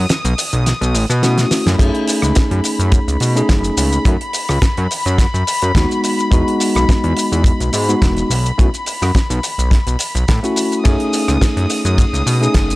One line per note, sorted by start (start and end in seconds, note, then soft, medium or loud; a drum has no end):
0.00 1.81 D#6 medium
0.09 snare loud
0.09 closed hi-hat loud
0.09 shaker medium
0.25 0.34 B1 loud
0.25 closed hi-hat medium
0.25 shaker soft
0.38 open hi-hat loud
0.38 shaker medium
0.53 0.73 B1 medium
0.53 closed hi-hat medium
0.53 shaker medium
0.66 snare medium
0.66 closed hi-hat loud
0.66 shaker medium
0.81 0.96 B1 medium
0.81 closed hi-hat medium
0.81 shaker medium
0.94 1.06 A1 loud
0.94 open hi-hat loud
0.94 shaker medium
1.10 1.45 B2 medium
1.10 cross-stick medium
1.10 closed hi-hat medium
1.10 shaker medium
1.22 1.76 A3 medium
1.22 1.76 C#4 medium
1.22 1.76 E4 medium
1.22 1.76 F#4 medium
1.22 snare medium
1.22 closed hi-hat loud
1.22 shaker medium
1.38 snare medium
1.38 closed hi-hat medium
1.38 shaker soft
1.51 snare medium
1.51 open hi-hat loud
1.51 shaker medium
1.66 1.76 F#2 loud
1.66 snare medium
1.66 closed hi-hat medium
1.66 shaker soft
1.78 1.91 F#2 loud
1.78 3.32 A3 medium
1.78 3.32 C#4 medium
1.78 3.33 D#4 medium
1.78 3.33 G#4 loud
1.78 10.86 B5 medium
1.78 kick loud
1.78 closed hi-hat loud
1.78 crash medium
1.78 shaker medium
1.95 closed hi-hat medium
2.08 open hi-hat loud
2.08 shaker medium
2.22 2.32 C#2 medium
2.22 cross-stick medium
2.22 closed hi-hat medium
2.22 shaker medium
2.35 kick loud
2.35 snare loud
2.35 closed hi-hat loud
2.35 shaker medium
2.51 2.61 F#2 loud
2.51 closed hi-hat medium
2.64 open hi-hat loud
2.64 shaker medium
2.79 3.00 F#2 medium
2.79 closed hi-hat medium
2.79 shaker soft
2.92 kick loud
2.92 closed hi-hat loud
2.92 shaker medium
3.08 3.17 C#2 medium
3.08 closed hi-hat medium
3.08 shaker soft
3.20 3.42 B2 medium
3.20 open hi-hat loud
3.20 shaker medium
3.35 4.02 A3 medium
3.35 4.03 C#4 medium
3.35 4.03 D#4 medium
3.35 4.03 G#4 medium
3.35 closed hi-hat medium
3.35 shaker medium
3.49 3.71 F#1 loud
3.49 kick loud
3.49 snare loud
3.49 closed hi-hat loud
3.49 shaker medium
3.64 closed hi-hat medium
3.64 shaker soft
3.77 3.99 C#2 medium
3.77 open hi-hat loud
3.77 shaker loud
3.92 closed hi-hat medium
3.92 shaker soft
4.05 4.17 F#2 loud
4.05 4.13 A3 loud
4.05 4.14 C#4 medium
4.05 4.14 D#4 medium
4.05 4.14 F#4 loud
4.05 kick loud
4.05 closed hi-hat loud
4.05 shaker medium
4.21 closed hi-hat medium
4.33 open hi-hat loud
4.33 shaker medium
4.49 4.59 C#2 medium
4.49 cross-stick medium
4.49 open hi-hat medium
4.49 shaker soft
4.62 kick loud
4.62 snare loud
4.62 closed hi-hat loud
4.62 shaker medium
4.77 4.87 F#2 loud
4.77 closed hi-hat medium
4.91 open hi-hat loud
4.91 shaker medium
5.06 5.26 F#2 medium
5.06 closed hi-hat medium
5.06 shaker medium
5.18 kick loud
5.18 snare medium
5.18 closed hi-hat loud
5.18 shaker medium
5.34 5.44 F#2 medium
5.34 closed hi-hat medium
5.34 shaker soft
5.47 open hi-hat loud
5.47 shaker medium
5.62 5.72 F#2 medium
5.62 closed hi-hat medium
5.62 shaker soft
5.75 5.86 D#2 loud
5.75 6.29 G#3 medium
5.75 6.29 B3 medium
5.75 6.29 D#4 medium
5.75 6.29 F#4 medium
5.75 kick loud
5.75 snare loud
5.75 closed hi-hat loud
5.75 shaker medium
5.91 closed hi-hat medium
5.91 shaker soft
6.04 open hi-hat loud
6.04 shaker medium
6.19 closed hi-hat medium
6.19 shaker soft
6.31 6.43 E2 loud
6.31 7.85 G#3 medium
6.31 7.85 B3 medium
6.31 7.85 D#4 medium
6.31 7.86 F#4 loud
6.31 kick loud
6.31 closed hi-hat medium
6.31 shaker medium
6.48 closed hi-hat medium
6.60 open hi-hat loud
6.60 shaker medium
6.75 6.85 B1 medium
6.75 cross-stick medium
6.75 closed hi-hat medium
6.75 shaker soft
6.89 kick loud
6.89 snare loud
6.89 closed hi-hat medium
6.89 shaker medium
7.04 7.14 E2 loud
7.04 closed hi-hat medium
7.17 open hi-hat loud
7.17 shaker medium
7.32 7.52 E2 medium
7.32 closed hi-hat medium
7.32 shaker medium
7.44 kick loud
7.44 closed hi-hat loud
7.44 shaker medium
7.60 7.70 B1 medium
7.60 closed hi-hat medium
7.60 shaker medium
7.73 7.95 G#2 medium
7.73 open hi-hat loud
7.73 shaker medium
7.88 8.28 G#3 medium
7.88 8.28 B3 medium
7.88 8.29 D#4 medium
7.88 8.29 F#4 medium
7.88 closed hi-hat soft
7.88 shaker medium
8.02 8.23 E1 loud
8.02 kick loud
8.02 snare loud
8.02 closed hi-hat medium
8.02 shaker medium
8.17 closed hi-hat soft
8.17 shaker soft
8.30 8.52 B1 medium
8.30 open hi-hat loud
8.30 shaker medium
8.46 closed hi-hat medium
8.46 shaker soft
8.58 8.70 B1 loud
8.58 8.66 A3 loud
8.58 8.66 C#4 medium
8.58 8.66 E4 medium
8.58 8.67 F#4 loud
8.58 kick loud
8.58 closed hi-hat medium
8.58 shaker medium
8.74 closed hi-hat medium
8.74 shaker soft
8.86 open hi-hat loud
8.86 shaker medium
9.02 9.12 F#2 medium
9.02 cross-stick medium
9.02 open hi-hat medium
9.02 shaker medium
9.15 kick loud
9.15 snare loud
9.15 closed hi-hat loud
9.15 shaker medium
9.30 9.40 B1 loud
9.30 closed hi-hat medium
9.30 shaker soft
9.43 open hi-hat loud
9.43 shaker medium
9.58 9.79 B1 medium
9.58 closed hi-hat medium
9.58 shaker medium
9.71 kick loud
9.71 snare medium
9.71 closed hi-hat loud
9.71 shaker medium
9.87 9.96 B1 medium
9.87 closed hi-hat medium
9.87 shaker soft
9.99 open hi-hat loud
9.99 shaker medium
10.15 10.25 B1 medium
10.15 closed hi-hat medium
10.15 shaker soft
10.28 10.40 A2 loud
10.28 kick loud
10.28 snare loud
10.28 closed hi-hat medium
10.28 shaker medium
10.43 10.82 A3 medium
10.43 10.82 C#4 medium
10.43 10.82 E4 medium
10.43 10.82 F#4 loud
10.43 closed hi-hat medium
10.43 shaker soft
10.56 open hi-hat loud
10.56 shaker medium
10.72 closed hi-hat medium
10.72 shaker soft
10.84 10.96 F#2 loud
10.84 12.38 A3 medium
10.84 12.38 C#4 medium
10.84 12.38 D#4 medium
10.84 12.39 G#4 loud
10.84 12.76 D#6 medium
10.84 kick loud
10.84 closed hi-hat loud
10.84 ride medium
10.84 shaker medium
11.00 closed hi-hat medium
11.13 open hi-hat loud
11.13 shaker medium
11.28 11.38 C#2 medium
11.28 cross-stick medium
11.28 closed hi-hat medium
11.28 shaker medium
11.41 kick medium
11.41 snare loud
11.41 closed hi-hat medium
11.41 ride medium
11.41 shaker medium
11.57 11.66 F#2 loud
11.57 closed hi-hat medium
11.70 open hi-hat loud
11.70 shaker medium
11.85 12.05 F#2 medium
11.85 closed hi-hat medium
11.85 shaker medium
11.98 kick loud
11.98 closed hi-hat loud
11.98 ride medium
11.98 shaker medium
12.13 12.23 C#2 medium
12.13 closed hi-hat medium
12.13 shaker medium
12.26 12.48 B2 medium
12.26 open hi-hat loud
12.26 shaker medium
12.41 12.76 A3 medium
12.41 12.76 C#4 medium
12.41 12.76 D#4 medium
12.41 12.76 G#4 medium
12.41 closed hi-hat soft
12.41 shaker soft
12.54 12.76 F#1 loud
12.54 kick medium
12.54 snare loud
12.54 closed hi-hat loud
12.54 ride medium
12.54 shaker medium
12.70 closed hi-hat medium
12.70 shaker soft